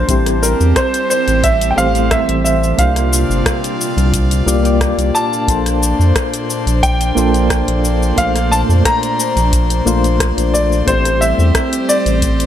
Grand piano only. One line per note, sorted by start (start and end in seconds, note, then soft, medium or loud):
0.00 0.45 C5 medium
0.43 0.77 A#4 medium
0.76 1.09 C5 loud
1.10 1.45 C5 medium
1.44 1.72 E5 loud
1.71 1.77 G5 medium
1.78 2.12 F5 loud
2.11 2.42 E5 loud
2.44 2.79 E5 medium
2.79 3.42 F5 loud
5.15 6.88 A5 loud
6.83 8.22 G5 loud
8.18 8.53 F5 loud
8.52 8.59 A5 loud
8.86 10.50 A#5 loud
10.54 10.88 D5 loud
10.87 11.22 C5 loud
11.21 11.90 E5 loud
11.89 12.46 D5 loud